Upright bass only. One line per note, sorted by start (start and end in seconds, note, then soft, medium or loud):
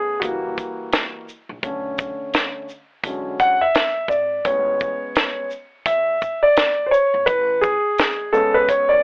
0.22 0.51 F#1 medium
1.49 1.61 A#1 medium
1.63 2.10 B1 medium
3.03 3.33 E2 medium
4.08 4.38 G#1 medium
4.45 4.92 A1 medium
5.86 6.15 E2 medium
7.14 7.25 G#1 medium
7.28 7.74 A1 loud
8.91 9.02 E2 medium